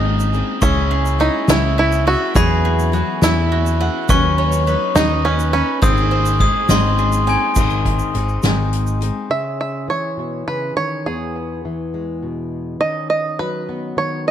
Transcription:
Already playing: G#1 G#2 D#3 G#3 C4 D#4 G#4 D#6
0.04 ride
0.20 shaker
0.32 G#3 C4 D#4 G#4, ride, shaker
0.61 C#2 C#3 G#3 C#4 E4 G#4 C#6, kick, ride, shaker
0.91 G#4, ride
1.06 shaker
1.19 G#3 C#4 D#4 E4 G#4, ride, shaker
1.48 C#2 C#3 G#3 C#4 E4 G#4 C#5, snare, ride, shaker
1.77 E4, ride
1.92 shaker
2.06 C#4 E4 F#4 G#4 E5, ride
2.34 E2 E3 F#3 B3 E4 F#4 G#4 B5, kick, ride, shaker
2.64 G#4, ride
2.79 shaker
2.92 F#3 B3 E4 F#4 G#4, ride, shaker
3.21 E2 E3 F#3 B3 E4 G#4 E5, snare, ride, shaker
3.51 F#4, ride
3.66 shaker
3.80 B3 E4 G#4 F#5, ride
4.09 D#2 D#3 F#3 C#4 D#4 B4 C#6, kick, ride, shaker
4.38 C#5, ride
4.52 shaker
4.66 F#3 C#4 D#4 B4, ride, shaker
4.95 D#2 D#3 F#3 C#4 D#4 B4 D#5, snare, ride, shaker
5.25 C#4 B4, ride
5.39 shaker
5.53 C#4 D#4 B4 B5, ride
5.82 G#1 G#2 D#3 G#3 C4 D#4 G#4 D#6, kick, ride, shaker
5.97 shaker
6.11 C5, ride
6.26 shaker
6.39 G#3 C4 D#4 G#4 D#6, kick, ride
6.69 G#1 G#2 D#3 G#3 C4 D#4 G#4 D#5 C6, snare, ride, shaker
6.98 G#4, ride, shaker
7.12 shaker
7.26 G#3 C4 D#4 G#4 G#5, ride, shaker
7.55 G#1 G#2 D#3 G#3 C4 D#4 G#4, kick, crash, shaker
7.70 shaker
7.85 kick, closed hi-hat
7.99 shaker
8.14 G#1 G#3 C4 D#4 G#4, closed hi-hat
8.29 shaker
8.43 G#1 G#2 D#3 G#3 C4 D#4 G#4, snare, closed hi-hat, shaker
8.73 closed hi-hat
8.87 shaker
9.01 G#3 C4 D#4 G#4, closed hi-hat
9.30 C#3 C#4 E5
9.61 E5
9.88 E3 C#5
10.17 B2
10.48 C#3 B4
10.76 D#3 C#5
11.06 E2 B3 G#4
11.65 E3
11.94 G#3
12.23 B2
12.80 D#3 C#4 D#5
13.10 D#5
13.39 F#3 B4
13.69 B3
13.97 D#3 C#5
14.28 D#5

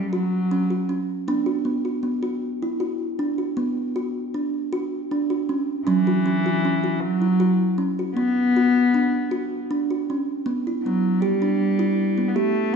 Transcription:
Already playing: F#3 G3 C#4
0.13 F#3 F#4
0.51 C#4
0.70 F#4
0.89 C#4
1.28 B3 D4
1.46 F#4
1.65 B3
1.85 F#4
2.03 B3
2.23 F#4
2.63 E4
2.80 F#4
3.19 D4
3.38 F#4
3.57 B3
3.96 F#4
4.34 D4
4.73 F#4
5.11 D4
5.30 F#4
5.49 C#4
5.87 E3 F#3 C#4
6.07 F#4
6.26 C#4
6.46 F#4
6.65 C#4
6.84 F#4
7.00 F#3
7.22 E4
7.40 F#4
7.78 C#4
7.99 F#4
8.15 B3
8.57 F#4
8.94 D4
9.31 F#4
9.71 D4
9.91 F#4
10.10 C#4
10.46 B3
10.67 E4
10.83 F#3 B3
11.20 G3 G4
11.42 D4
11.79 E4
12.18 B3
12.29 B3
12.35 A3 G4

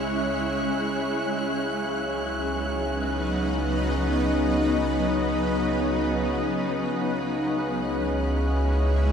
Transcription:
Already playing: C#2 C#3 G#3 C#4 E4 C#5 E5 F#6
1.30 C#2 F#3
1.45 D#4 B4
1.53 B3
1.96 D#5
7.00 C#2 G#3 F#6
7.21 E4
7.29 C#4
7.81 C#5
8.02 E5

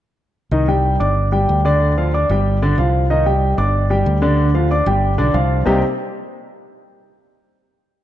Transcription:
0.51 C2 D#3 D#4 D#5
0.68 G3 G4 G5
1.00 G1 D4 D5 D6
1.32 G3 G4 G5
1.49 D2
1.65 D3 D4 D5
1.97 F3 F4 F5
2.14 D4 D5 D6
2.29 G1 G3 G4 G5
2.62 D3 D4 D5
2.78 C2 F3 F4 F5
3.10 D#3 D#4 D#5
3.26 G3 G4 G5
3.58 G1 D4 D5 D6
3.90 G3 G4 G5
4.06 D2
4.22 D3 D4 D5
4.54 F3 F4 F5
4.71 D4 D5 D6
4.86 G1 G3 G4 G5
5.18 B1 D3 D4 D5
5.34 C2 F3 F4 F5
5.66 C2 C3 G3 A#3 C4 D#4 G4

